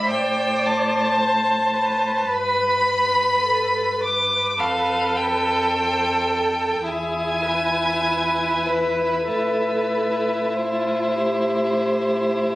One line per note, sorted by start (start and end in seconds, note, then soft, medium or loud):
0.05 2.29 A2 medium
0.05 2.25 C5 soft
0.05 1.19 D5 medium
0.10 0.67 G5 medium
0.65 2.34 A5 medium
1.19 1.75 C5 soft
1.74 3.42 B4 medium
2.29 4.59 G2 soft
2.29 4.55 B4 soft
2.29 4.03 B5 medium
3.43 4.02 A4 soft
4.01 5.70 B4 soft
4.01 4.61 D6 medium
4.57 6.85 F2 soft
4.57 6.82 A4 medium
4.57 5.18 F5 medium
5.16 6.89 G5 medium
5.69 6.29 C5 soft
6.27 6.83 A4 soft
6.84 9.29 E2 soft
6.84 9.24 E4 soft
6.84 7.44 G#4 soft
6.84 8.68 G#5 medium
7.43 9.27 B4 soft
8.66 9.28 B4 soft
9.27 12.55 A2 soft
9.27 12.55 E4 soft
9.27 10.39 A4 soft
9.27 10.55 B4 soft
10.53 11.16 F4 soft
10.53 12.55 C5 soft
11.15 12.55 G4 soft